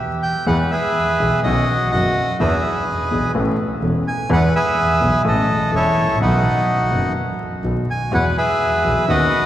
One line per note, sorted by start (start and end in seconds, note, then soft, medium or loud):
0.23 0.45 G5 medium
0.46 0.67 E2 medium
0.46 0.68 E2 medium
0.46 0.68 E3 medium
0.46 0.67 G#3 medium
0.46 0.67 B3 medium
0.46 0.68 G#4 medium
0.46 0.71 B4 medium
0.46 0.58 F#5 medium
0.71 1.40 G#4 medium
0.71 1.40 B4 medium
0.71 1.40 E5 medium
1.20 1.40 B1 soft
1.20 1.40 B2 soft
1.20 1.40 E3 soft
1.20 1.40 G#3 soft
1.20 1.40 B3 soft
1.20 1.40 G#4 soft
1.43 1.64 B1 medium
1.43 1.64 B2 medium
1.43 1.64 D#3 medium
1.43 1.64 B3 medium
1.43 1.64 C#4 medium
1.43 1.64 F#4 medium
1.43 1.91 F#4 medium
1.43 1.88 D#5 medium
1.91 2.12 F#1 soft
1.91 2.12 F#1 medium
1.91 2.12 F#2 soft
1.91 2.12 D#3 soft
1.91 2.12 B3 soft
1.91 2.12 C#4 soft
1.91 2.12 F#4 soft
1.91 2.37 F#4 medium
1.91 2.36 D#5 medium
2.40 2.60 E2 medium
2.40 2.60 E3 medium
2.40 2.60 B3 medium
2.40 2.60 D4 medium
2.40 2.60 G#4 medium
2.40 3.32 G#4 medium
2.40 3.32 B4 medium
2.40 2.84 E5 medium
3.11 3.31 B1 soft
3.11 3.32 B1 medium
3.11 3.32 B2 medium
3.11 3.31 E3 soft
3.11 3.31 B3 soft
3.11 3.32 D4 soft
3.11 3.32 G#4 medium
3.35 3.55 A1 medium
3.35 3.55 A2 medium
3.35 3.55 E3 medium
3.35 3.55 B3 medium
3.35 3.55 C#4 medium
3.35 3.55 A4 medium
3.82 4.03 E1 soft
3.82 4.03 E1 medium
3.82 4.03 E2 soft
3.82 4.02 E3 soft
3.82 4.03 B3 soft
3.82 4.03 C#4 soft
3.82 4.03 A4 soft
4.08 4.29 G#5 medium
4.30 4.50 E2 medium
4.30 4.50 E3 medium
4.30 4.50 G#3 medium
4.30 4.50 B3 medium
4.30 4.50 G#4 medium
4.30 4.54 B4 medium
4.30 4.43 F#5 loud
4.55 5.22 G#4 medium
4.55 5.22 B4 medium
4.55 5.22 E5 medium
5.00 5.21 B1 soft
5.00 5.21 B1 medium
5.00 5.21 B2 medium
5.00 5.21 E3 soft
5.00 5.21 G#3 soft
5.00 5.21 B3 soft
5.00 5.21 G#4 soft
5.24 5.45 A1 medium
5.24 5.45 A2 medium
5.24 5.45 E3 medium
5.24 5.45 A3 medium
5.24 5.45 C#4 medium
5.24 5.45 A4 medium
5.24 5.75 A4 medium
5.24 5.71 D#5 medium
5.72 5.92 E1 soft
5.72 5.93 E1 medium
5.72 5.92 E2 soft
5.72 5.92 E3 soft
5.72 5.92 A3 soft
5.72 5.92 C#4 soft
5.72 5.92 A4 soft
5.72 6.19 C#5 medium
5.76 6.19 E4 medium
5.76 6.19 A4 medium
5.97 6.19 A1 medium
6.03 6.09 G#1 soft
6.08 6.14 A1 medium
6.15 6.21 A#1 medium
6.20 6.40 B1 medium
6.20 6.41 B2 medium
6.20 6.40 D#3 medium
6.20 6.40 F#3 medium
6.20 6.41 B3 medium
6.20 7.13 D#4 medium
6.20 6.41 F#4 medium
6.20 7.13 F#4 medium
6.20 6.66 B4 medium
6.91 7.12 F#1 medium
6.91 7.12 F#1 soft
6.91 7.12 F#2 medium
6.91 7.12 D#3 soft
6.91 7.12 F#3 soft
6.91 7.12 B3 soft
6.91 7.12 F#4 soft
7.64 7.84 B1 medium
7.64 7.85 B1 soft
7.64 7.85 B2 medium
7.64 7.84 D#3 soft
7.64 7.85 F#3 soft
7.64 7.85 B3 soft
7.64 7.85 F#4 soft
7.90 8.14 G#5 medium
8.12 8.33 E2 medium
8.12 8.32 E3 medium
8.12 8.33 G#3 medium
8.12 8.33 B3 medium
8.12 8.33 F#4 medium
8.12 8.37 B4 medium
8.12 8.24 F#5 medium
8.37 9.05 G#4 medium
8.37 9.05 B4 medium
8.37 9.12 E5 medium
8.85 9.05 B1 medium
8.85 9.05 B1 soft
8.85 9.05 B2 soft
8.85 9.05 E3 soft
8.85 9.05 G#3 soft
8.85 9.05 B3 soft
8.85 9.05 F#4 soft
9.08 9.28 D#2 medium
9.08 9.29 D#2 medium
9.08 9.29 D#3 medium
9.08 9.28 B3 medium
9.08 9.29 C#4 medium
9.08 9.29 F#4 medium
9.08 9.46 F#4 medium
9.08 9.46 B4 medium
9.08 9.46 D#5 medium